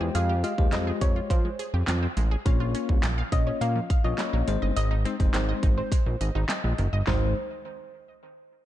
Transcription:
Already playing: tine electric piano G#3 F4 G4 C5, synth pluck G5
0.01 analog synth bass E2, synth arpeggio sound G#4
0.15 analog synth bass F2, synth arpeggio sound G#4, synth pluck F5, closed hi-hat
0.29 synth arpeggio sound G4
0.44 tine electric piano G#3 F4 G4 D#5, synth arpeggio sound F4, synth pluck F5, closed hi-hat
0.58 analog synth bass D#2, tine electric piano G#3 F4 G4 C5, kick
0.72 analog synth bass F2, synth arpeggio sound G#3, synth pluck D#5, snare, clap, closed hi-hat
0.87 synth arpeggio sound G#4
1.01 analog synth bass F2, synth arpeggio sound G4, synth pluck C#5, kick, closed hi-hat
1.16 synth arpeggio sound F4
1.30 analog synth bass F3, synth arpeggio sound C4, synth pluck C5, kick, closed hi-hat
1.45 synth arpeggio sound G#3
1.59 synth arpeggio sound G#4, closed hi-hat
1.74 analog synth bass F2, synth arpeggio sound G4
1.87 analog synth bass F2, synth arpeggio sound F4, snare, clap, closed hi-hat
2.03 synth arpeggio sound C4
2.17 analog synth bass A1, synth arpeggio sound G#3, closed hi-hat
2.31 synth arpeggio sound G#4
2.46 analog synth bass A#1, tine electric piano A#3 C#4 F4 C#5, synth arpeggio sound F5, kick, closed hi-hat
2.60 synth arpeggio sound F4
2.75 synth arpeggio sound C#4, closed hi-hat
2.89 analog synth bass C2, kick
3.03 analog synth bass A#1, synth arpeggio sound F3, snare, clap, closed hi-hat
3.18 synth arpeggio sound F5
3.32 analog synth bass A#1, tine electric piano A#3 C#4 F4 C#5, synth arpeggio sound F4, synth pluck D#5, kick, closed hi-hat
3.47 synth arpeggio sound C#4, synth pluck C#5
3.61 analog synth bass A#2, synth arpeggio sound A#3, synth pluck F5, closed hi-hat
3.76 synth arpeggio sound F3
3.90 synth arpeggio sound F5, kick, closed hi-hat
4.04 analog synth bass A#1, tine electric piano A#3 C#4 F4 C#5, synth arpeggio sound F4, synth pluck D#5
4.18 synth arpeggio sound C#4, snare, clap, closed hi-hat
4.33 analog synth bass A#1, synth arpeggio sound A#3
4.47 analog synth bass G#1, synth arpeggio sound D#3, tine electric piano G#3 C4 D#4 C5, closed hi-hat
4.62 analog synth bass G1, synth arpeggio sound D#5
4.76 analog synth bass G#1, synth arpeggio sound D#5, synth pluck D#5, closed hi-hat
4.91 synth arpeggio sound D#4
5.05 tine electric piano G#3 C4 D#4 C5, synth arpeggio sound C4, closed hi-hat
5.20 analog synth bass F1, tine electric piano G#3 C4 D#4 C5, kick, closed hi-hat
5.34 analog synth bass G#1, synth arpeggio sound D#3, synth pluck C5, snare, clap, closed hi-hat
5.49 synth arpeggio sound D#5
5.63 analog synth bass G#1, synth arpeggio sound D#4, kick, closed hi-hat
5.78 synth arpeggio sound C4, synth pluck C5
5.92 synth arpeggio sound G#3, kick, closed hi-hat
6.06 analog synth bass A#1, synth arpeggio sound D#3
6.21 analog synth bass G#1, synth arpeggio sound D#5, closed hi-hat
6.35 analog synth bass G#1, synth arpeggio sound D#4
6.49 synth arpeggio sound C4, tine electric piano D#5, snare, clap, closed hi-hat
6.64 analog synth bass A#1, synth arpeggio sound G#3
6.78 analog synth bass F#1, synth arpeggio sound D#3, closed hi-hat
6.93 analog synth bass G1, synth arpeggio sound D#5
7.07 analog synth bass G#1, synth arpeggio sound D#3 G#3 C4 D#4, tine electric piano G#3 D#4 C5, synth pluck C5, snare, clap, floor tom

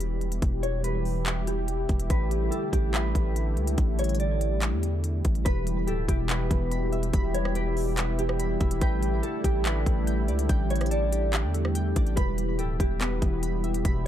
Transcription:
Already playing: 808-style bass E1, analog synth pad B2 E3 G3 E4 G4, clean electric guitar B4
0.00 closed hi-hat
0.21 closed hi-hat
0.32 closed hi-hat
0.42 808-style bass E1, kick, closed hi-hat
0.63 clean electric guitar C#5, closed hi-hat
0.84 clean electric guitar B4, closed hi-hat
1.05 open hi-hat
1.26 clap, closed hi-hat
1.47 clean electric guitar G4, closed hi-hat
1.68 closed hi-hat
1.89 808-style bass E1, kick, closed hi-hat
2.00 closed hi-hat
2.10 808-style bass A1, analog synth pad D3 G3 A3, clean electric guitar B4, kick, closed hi-hat
2.31 closed hi-hat
2.51 clean electric guitar A4, closed hi-hat
2.73 808-style bass A1, clean electric guitar G4, kick, closed hi-hat
2.94 clean electric guitar B4, clap, closed hi-hat
3.15 808-style bass A1, kick, closed hi-hat
3.36 closed hi-hat
3.57 808-style bass C#2, closed hi-hat
3.67 closed hi-hat
3.78 808-style bass A1, kick, closed hi-hat
3.99 clean electric guitar C#5, closed hi-hat
4.04 closed hi-hat
4.09 closed hi-hat
4.15 closed hi-hat
4.20 clean electric guitar D5, closed hi-hat
4.41 closed hi-hat
4.62 clap, closed hi-hat
4.72 808-style bass E2
4.83 closed hi-hat
5.04 closed hi-hat
5.25 808-style bass A1, kick, closed hi-hat
5.35 closed hi-hat
5.45 808-style bass E1, analog synth pad B2 E3 G3 E4 G4, clean electric guitar B4, synth keys B5, kick, closed hi-hat
5.67 closed hi-hat
5.87 808-style bass D1, synth keys G4, clean electric guitar A4, closed hi-hat
6.08 808-style bass E1, synth keys E4, clean electric guitar G4, kick, closed hi-hat
6.29 synth keys B3, clean electric guitar B4, clap, closed hi-hat
6.51 808-style bass E1, synth keys E3, kick, closed hi-hat
6.71 synth keys B5, closed hi-hat
6.92 synth keys E5, closed hi-hat
7.03 closed hi-hat
7.13 808-style bass E1, synth keys B5, kick, closed hi-hat
7.34 clean electric guitar C#5, closed hi-hat
7.45 cross-stick
7.55 synth keys G4, clean electric guitar B4, closed hi-hat
7.77 synth keys E4, open hi-hat
7.97 synth keys B3, clap, closed hi-hat
8.18 synth keys E3, clean electric guitar G4, closed hi-hat
8.29 cross-stick
8.39 synth keys B5, closed hi-hat
8.60 808-style bass E1, synth keys E5, kick, closed hi-hat
8.71 closed hi-hat
8.81 808-style bass A1, analog synth pad D3 A3 G4, clean electric guitar B4, synth keys G5, kick, closed hi-hat
9.03 closed hi-hat
9.23 clean electric guitar A4, synth keys A4, closed hi-hat
9.44 808-style bass A1, clean electric guitar G4, synth keys G4, kick, closed hi-hat
9.65 synth keys D4, clean electric guitar B4, clap, closed hi-hat
9.86 808-style bass A1, synth keys A3, kick, closed hi-hat
10.07 synth keys G5, closed hi-hat
10.28 808-style bass C#2, synth keys D5, closed hi-hat
10.39 closed hi-hat
10.49 808-style bass A1, synth keys G5, kick, closed hi-hat
10.70 clean electric guitar C#5, closed hi-hat
10.76 closed hi-hat
10.81 cross-stick, closed hi-hat
10.86 closed hi-hat
10.91 synth keys A4, clean electric guitar D5, closed hi-hat
11.12 synth keys G4, closed hi-hat
11.33 synth keys D4, clap, closed hi-hat
11.44 808-style bass E2
11.54 synth keys A3, closed hi-hat
11.65 cross-stick
11.75 synth keys G5, closed hi-hat
11.96 808-style bass A1, synth keys D5, kick, closed hi-hat
12.07 closed hi-hat
12.16 808-style bass E1, analog synth pad B2 E3 E4, clean electric guitar B4, synth keys B5, kick, closed hi-hat
12.38 closed hi-hat
12.59 808-style bass D1, synth keys G4, clean electric guitar A4, closed hi-hat
12.80 808-style bass E1, synth keys E4, clean electric guitar G4, kick, closed hi-hat
13.00 synth keys B3, clean electric guitar B4, clap, closed hi-hat
13.22 808-style bass E1, synth keys E3, kick, closed hi-hat
13.43 synth keys B5, closed hi-hat
13.64 synth keys E5, closed hi-hat
13.74 closed hi-hat
13.85 808-style bass E1, synth keys B5, kick, closed hi-hat

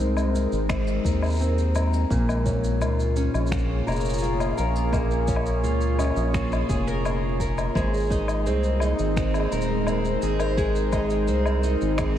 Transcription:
Already playing: ambient pad G#3 D#4 A#4 C5, twelve-string acoustic guitar G#3 D#4 A#4
0.00 analog synth bass C2, twelve-string acoustic guitar C4
0.17 low woodblock, shaker
0.34 twelve-string acoustic guitar D#4, shaker
0.52 analog synth bass G#1, shaker
0.69 twelve-string acoustic guitar C4, finger snap, kick, low woodblock, shaker
0.87 shaker
1.04 analog synth bass D#2, twelve-string acoustic guitar A#4, kick, shaker
1.22 low woodblock, shaker
1.26 shaker
1.28 shaker
1.30 shaker
1.32 shaker
1.35 shaker
1.36 shaker
1.39 twelve-string acoustic guitar C4, shaker
1.41 shaker
1.58 shaker
1.75 twelve-string acoustic guitar A#4, low woodblock, shaker
1.93 shaker
2.10 analog synth bass A#1, twelve-string acoustic guitar A#2, ambient pad A#3, kick, shaker
2.29 low woodblock, shaker
2.45 twelve-string acoustic guitar C#4, ambient pad F4 C#5, kick, shaker
2.64 shaker
2.81 analog synth bass C#2, twelve-string acoustic guitar F4, low woodblock, shaker
2.90 ambient pad G#4
3.00 shaker
3.16 twelve-string acoustic guitar C#4, shaker
3.34 analog synth bass A#1, low woodblock, shaker
3.47 shaker
3.51 twelve-string acoustic guitar F4, finger snap, kick
3.58 shaker
3.87 analog synth bass F1, twelve-string acoustic guitar A#4, low woodblock, shaker
3.91 shaker
3.96 shaker
4.00 shaker
4.05 shaker
4.09 shaker
4.14 shaker
4.18 shaker
4.22 twelve-string acoustic guitar F4, shaker
4.40 low woodblock, shaker
4.45 low woodblock
4.49 low woodblock
4.53 low woodblock
4.57 analog synth bass A#1, twelve-string acoustic guitar A#4, low woodblock, shaker
4.62 low woodblock
4.67 low woodblock
4.71 low woodblock
4.76 shaker
4.93 twelve-string acoustic guitar A#2, kick, low woodblock, shaker
5.11 shaker
5.28 twelve-string acoustic guitar C#4, kick, shaker
5.36 low woodblock
5.46 shaker
5.64 analog synth bass C#2, twelve-string acoustic guitar F4, shaker
5.81 shaker
5.99 twelve-string acoustic guitar C#4, low woodblock, shaker
6.04 low woodblock
6.10 low woodblock
6.16 analog synth bass A#1, low woodblock, shaker
6.22 low woodblock
6.28 low woodblock
6.34 twelve-string acoustic guitar F4, finger snap, kick, shaker
6.52 low woodblock, shaker
6.69 analog synth bass F1, twelve-string acoustic guitar G#4, kick, shaker
6.87 twelve-string acoustic guitar A#4, shaker
7.05 twelve-string acoustic guitar F4, low woodblock, shaker
7.40 twelve-string acoustic guitar A#4, kick, shaker
7.58 low woodblock, shaker
7.75 analog synth bass G#1, ambient pad G#3, twelve-string acoustic guitar G#3, celesta C5, kick, low woodblock, shaker
7.83 ambient pad D#4
7.94 celesta G#4, shaker
7.97 ambient pad A#4, shaker
8.00 shaker
8.03 shaker
8.06 shaker
8.09 twelve-string acoustic guitar D#4, kick, shaker
8.11 shaker
8.28 low woodblock, shaker
8.46 analog synth bass C2, twelve-string acoustic guitar C4, celesta G#4, shaker
8.56 ambient pad C5
8.64 celesta C5, shaker
8.80 twelve-string acoustic guitar D#4, celesta G#4, low woodblock, shaker
8.99 analog synth bass G#1, shaker
9.16 twelve-string acoustic guitar C4, finger snap, kick, shaker
9.34 celesta G#4, low woodblock, shaker
9.40 low woodblock
9.46 low woodblock
9.52 analog synth bass D#1, twelve-string acoustic guitar A#4, celesta C5, shaker
9.61 shaker
9.70 celesta G#4
9.87 twelve-string acoustic guitar C4, low woodblock, shaker
10.05 shaker
10.22 analog synth bass G#1, twelve-string acoustic guitar G#4, celesta G#4, shaker
10.40 twelve-string acoustic guitar A#4, celesta C5, low woodblock, shaker
10.57 twelve-string acoustic guitar G#3, celesta G#4, kick, shaker
10.76 shaker
10.92 twelve-string acoustic guitar D#4, kick, low woodblock, shaker
11.10 celesta G#4, shaker
11.28 analog synth bass C2, twelve-string acoustic guitar C4, celesta C5, shaker
11.45 celesta G#4, low woodblock, shaker
11.63 twelve-string acoustic guitar D#4, shaker
11.81 analog synth bass G#1, shaker
11.98 twelve-string acoustic guitar C4, celesta G#4, finger snap, kick, low woodblock, shaker

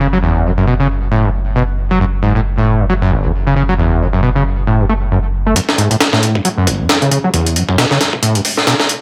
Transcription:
Already playing: sub bass F#1
0.00 acid bass C#3
0.13 acid bass F#3
0.23 acid bass E2
0.45 acid bass F#2
0.57 acid bass F#2
0.67 acid bass B2
0.80 acid bass C#3
1.11 acid bass A2
1.24 acid bass F#2
1.56 acid bass B2
1.91 acid bass F#3
2.00 acid bass F#2
2.23 acid bass G#2
2.35 acid bass A2
2.58 acid bass A2
2.80 acid bass F#2
2.89 acid bass F#3
3.02 acid bass F#2
3.12 acid bass F#1
3.24 acid bass F#2
3.47 acid bass C#3
3.56 acid bass C#3
3.69 acid bass F#3
3.78 acid bass E2
4.01 acid bass F#2
4.13 acid bass F#2
4.23 acid bass B2
4.35 acid bass C#3
4.67 acid bass A2
4.80 acid bass F#2
4.89 acid bass A3
5.12 acid bass F#2
5.46 acid bass A3
5.56 sub bass F#1, acid bass F#2, kick, closed hi-hat
5.69 snare
5.78 acid bass G#2, closed hi-hat
5.91 acid bass A2, closed hi-hat
6.01 snare, closed hi-hat
6.13 acid bass A2, snare
6.23 sub bass E1, closed hi-hat
6.35 acid bass F#2, kick
6.45 acid bass F#3, closed hi-hat
6.58 acid bass F#2
6.67 acid bass F#1, sub bass F#1, kick, closed hi-hat
6.80 acid bass F#2
6.89 snare, closed hi-hat
7.02 acid bass C#3, closed hi-hat
7.11 acid bass C#3, closed hi-hat
7.24 acid bass F#3
7.34 acid bass E2, kick, closed hi-hat
7.46 closed hi-hat
7.56 acid bass F#2, closed hi-hat
7.69 acid bass F#2, kick
7.78 acid bass B2, snare, closed hi-hat
7.91 acid bass C#3, snare
8.00 sub bass E1, snare, closed hi-hat
8.13 kick
8.22 sub bass E1, acid bass A2, closed hi-hat
8.35 acid bass F#2, closed hi-hat
8.45 open hi-hat
8.57 snare
8.67 acid bass B2, snare, closed hi-hat
8.80 snare
8.89 closed hi-hat

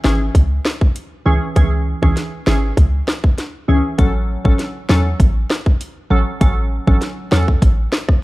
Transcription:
0.04 808-style bass G#1, synth pluck E3 C#4 G#4, cross-stick, snare
0.35 808-style bass C#2, kick, closed hi-hat
0.65 cross-stick, snare
0.81 kick
0.96 closed hi-hat
1.26 808-style bass C#2, synth pluck E3 C#4 G#4
1.56 808-style bass C#2, synth pluck E3 C#4 G#4, kick, closed hi-hat
2.02 808-style bass C#2, synth pluck E3 C#4 G#4, kick
2.17 snare, closed hi-hat
2.47 808-style bass G#1, synth pluck E3 C#4 G#4, cross-stick, snare
2.77 808-style bass C#2, kick, closed hi-hat
3.08 cross-stick, snare
3.24 kick
3.38 snare, closed hi-hat
3.68 808-style bass C#2, synth pluck E3 C#4 G#4
3.98 808-style bass A1, synth pluck F#3 C#4 A4, kick, closed hi-hat
4.45 808-style bass A1, synth pluck F#3 C#4 A4, kick
4.59 snare, closed hi-hat
4.89 808-style bass E2, synth pluck F#3 C#4 A4, cross-stick, snare
5.20 808-style bass A1, kick, closed hi-hat
5.50 cross-stick, snare
5.66 kick
5.81 closed hi-hat
6.10 808-style bass A1, synth pluck F#3 C#4 A4
6.41 808-style bass A1, synth pluck F#3 C#4 A4, kick, closed hi-hat
6.87 808-style bass A1, synth pluck F#3 C#4 A4, kick
7.01 snare, closed hi-hat
7.31 808-style bass E2, synth pluck F#3 C#4 A4, cross-stick, snare
7.48 kick
7.62 808-style bass A1, kick, closed hi-hat
7.92 cross-stick, snare
8.09 kick, cross-stick

